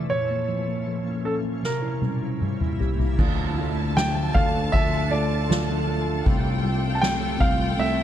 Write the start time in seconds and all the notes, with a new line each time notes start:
Already playing: C3 E3 A3 D5
0.10 A#2 F3 C#4 C#5
0.30 A#3
0.48 F3
0.68 A#3
0.87 F3
1.05 A#3
1.25 C#4 A4
1.43 A#3
1.63 C3 A#3 E4 A#4, snare
1.82 E4
2.02 G3, high tom
2.22 E4
2.41 G3, mid tom
2.61 E4, mid tom
2.80 G4, floor tom
2.99 E4, floor tom
3.18 D2 D3 F3 A3 D4 F4 A4 A5, kick, crash
3.57 A3 D4 F4, ride
3.96 D3 F3 A3 D4 F4 G5, snare, ride
4.33 D2 A3 D4 F4 A4 F5, kick, ride
4.72 D2 F3 A3 D4 F4 E5, kick, ride
5.11 A3 D4 F4 A4 D5, ride
5.49 D3 F3 A3 D4 F4, snare, ride
5.88 A4, ride
6.25 C2 C3 G3 A3 C4 F4 G5, kick, ride
6.63 G3 A3 C4 F4, ride
6.95 A5
7.01 C3 G3 A3 C4 F4 G5, snare, ride
7.39 C2 A3 C4 F4 F5, kick, ride
7.77 C2 G3 A3 C4 F4 E5, ride